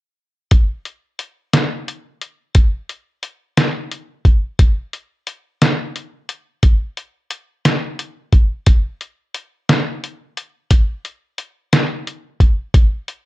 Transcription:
0.51 kick medium
0.51 closed hi-hat medium
0.85 closed hi-hat soft
1.19 closed hi-hat soft
1.53 snare medium
1.53 closed hi-hat medium
1.88 closed hi-hat soft
2.21 closed hi-hat soft
2.55 kick medium
2.55 closed hi-hat medium
2.89 closed hi-hat soft
3.23 closed hi-hat soft
3.57 snare medium
3.57 closed hi-hat medium
3.91 closed hi-hat soft
4.25 kick medium
4.25 closed hi-hat soft
4.59 kick medium
4.59 closed hi-hat medium
4.93 closed hi-hat soft
5.27 closed hi-hat soft
5.62 snare medium
5.62 closed hi-hat medium
5.96 closed hi-hat soft
6.29 closed hi-hat soft
6.63 kick medium
6.63 closed hi-hat medium
6.97 closed hi-hat soft
7.31 closed hi-hat soft
7.65 snare medium
7.65 closed hi-hat medium
7.99 closed hi-hat soft
8.33 kick medium
8.33 closed hi-hat soft
8.66 kick medium
8.66 closed hi-hat medium
9.01 closed hi-hat soft
9.35 closed hi-hat soft
9.69 snare medium
9.69 closed hi-hat medium
10.04 closed hi-hat soft
10.37 closed hi-hat soft
10.71 kick medium
10.71 closed hi-hat medium
11.05 closed hi-hat soft
11.38 closed hi-hat soft
11.73 snare medium
11.73 closed hi-hat medium
12.07 closed hi-hat soft
12.40 kick medium
12.40 closed hi-hat soft
12.74 kick medium
12.74 closed hi-hat medium
13.08 closed hi-hat soft

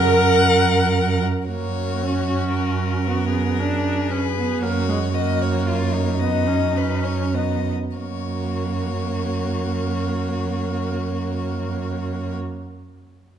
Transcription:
0.00 1.24 F#2 medium
0.00 1.18 A#4 medium
0.00 1.24 A#4 medium
0.00 1.18 F#5 medium
1.47 4.58 F#2 soft
1.47 2.03 A#3 soft
1.47 3.03 F#4 soft
1.47 2.51 C#5 soft
2.02 2.28 C#4 soft
2.29 3.09 C#4 soft
2.54 4.12 A#4 soft
3.07 3.61 B3 soft
3.07 3.32 F#4 medium
3.33 4.64 G#4 soft
3.59 4.10 D4 soft
4.11 4.19 C#4 medium
4.11 4.62 B4 soft
4.37 4.64 B3 soft
4.62 7.69 F#2 medium
4.62 4.88 A#3 medium
4.62 5.14 F#4 soft
4.62 5.16 C#5 soft
4.88 4.96 G#3 soft
5.14 6.18 A#3 medium
5.14 5.68 F#4 soft
5.14 5.43 D#5 medium
5.42 5.67 C#5 soft
5.67 5.95 F4 soft
5.67 6.22 C#5 soft
5.93 7.34 D#4 soft
6.20 6.49 B3 soft
6.20 6.79 D#5 soft
6.47 6.75 C#4 soft
6.75 7.35 C#4 soft
6.75 7.06 B4 soft
7.04 7.36 C#5 soft
7.33 7.72 B3 soft
7.33 7.72 D#4 soft
7.33 7.73 D#5 soft
7.96 12.34 F#2 soft
7.96 12.35 A#3 soft
7.96 12.35 F#4 soft
7.96 12.35 C#5 soft

